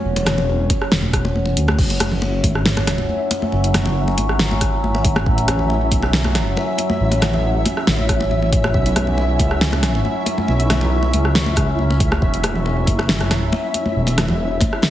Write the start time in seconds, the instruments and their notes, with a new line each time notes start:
Already playing: synth drone F#3 C#4
0.05 detuned saw bass E1
0.16 closed hi-hat, muted conga
0.26 cross-stick, snare, closed hi-hat, high conga
0.38 muted conga, low conga
0.70 kick, closed hi-hat, muted conga, high conga
0.82 cross-stick
0.92 detuned saw bass E1, snare, muted conga
1.02 high conga
1.13 kick, cross-stick, closed hi-hat
1.25 muted conga
1.35 high conga
1.46 muted conga
1.57 detuned saw bass D2, closed hi-hat
1.68 cross-stick, high conga
1.79 detuned saw bass F#1, synth drone F#3 C#4, synth texture E4 E5, kick, crash
1.90 closed hi-hat, muted conga
2.00 cross-stick, closed hi-hat, high conga
2.12 low conga
2.22 muted conga
2.44 detuned saw bass G#1, kick, closed hi-hat, muted conga, high conga
2.55 cross-stick
2.66 snare
2.77 cross-stick, muted conga, high conga
2.87 cross-stick, snare, closed hi-hat
2.98 muted conga
3.09 high conga
3.31 closed hi-hat, muted conga
3.42 high conga
3.52 detuned saw bass F#1, muted conga
3.64 closed hi-hat
3.74 cross-stick, snare, closed hi-hat, high conga
3.86 muted conga, low conga
4.08 muted conga
4.18 detuned saw bass G#1, closed hi-hat, high conga
4.29 cross-stick
4.39 snare, muted conga
4.51 high conga
4.61 kick, cross-stick, closed hi-hat, muted conga
4.84 high conga
4.95 muted conga
5.05 kick, closed hi-hat
5.16 cross-stick, muted conga, high conga
5.26 detuned saw bass A1, kick
5.38 closed hi-hat
5.48 cross-stick, closed hi-hat, muted conga, high conga
5.59 low conga
5.70 muted conga
5.91 detuned saw bass B1, kick, closed hi-hat, high conga
6.02 cross-stick, muted conga
6.13 snare
6.24 cross-stick, muted conga, high conga
6.35 cross-stick, snare, closed hi-hat
6.57 muted conga, high conga
6.78 closed hi-hat, muted conga
6.90 high conga
7.00 detuned saw bass A1
7.12 closed hi-hat, muted conga
7.22 cross-stick, snare, closed hi-hat, high conga
7.33 muted conga, low conga
7.66 closed hi-hat, muted conga, high conga
7.77 cross-stick
7.87 detuned saw bass A1, snare, muted conga
7.98 high conga
8.09 kick, cross-stick, closed hi-hat
8.20 muted conga
8.31 high conga
8.42 muted conga
8.53 kick, closed hi-hat
8.64 cross-stick, high conga
8.74 detuned saw bass B1, kick
8.86 closed hi-hat, muted conga
8.96 cross-stick, closed hi-hat, high conga
9.07 low conga
9.18 muted conga
9.39 detuned saw bass C#2, kick, closed hi-hat, muted conga, high conga
9.51 cross-stick
9.61 snare
9.72 cross-stick, muted conga, high conga
9.83 cross-stick, snare, closed hi-hat
9.95 muted conga
10.05 high conga
10.26 closed hi-hat, muted conga
10.38 high conga
10.48 detuned saw bass B1, muted conga
10.60 closed hi-hat
10.70 cross-stick, snare, closed hi-hat, high conga
10.81 muted conga, low conga
11.03 muted conga
11.13 detuned saw bass C#2, closed hi-hat, high conga
11.25 cross-stick
11.35 snare, muted conga
11.46 high conga
11.56 kick, cross-stick, closed hi-hat, muted conga
11.79 high conga
11.90 muted conga
12.00 kick, closed hi-hat
12.12 cross-stick, muted conga, high conga
12.22 detuned saw bass E1, kick
12.34 closed hi-hat
12.43 cross-stick, closed hi-hat, muted conga, high conga
12.56 low conga
12.66 muted conga
12.87 detuned saw bass F#1, kick, closed hi-hat, high conga
12.99 cross-stick, muted conga
13.09 snare
13.21 cross-stick, muted conga, high conga
13.31 cross-stick, snare, closed hi-hat
13.52 muted conga, high conga
13.74 closed hi-hat, muted conga
13.86 high conga
13.96 detuned saw bass E1
14.07 closed hi-hat, muted conga
14.18 cross-stick, snare, closed hi-hat, high conga
14.28 muted conga, low conga
14.61 kick, closed hi-hat, muted conga, high conga
14.73 cross-stick
14.82 snare, muted conga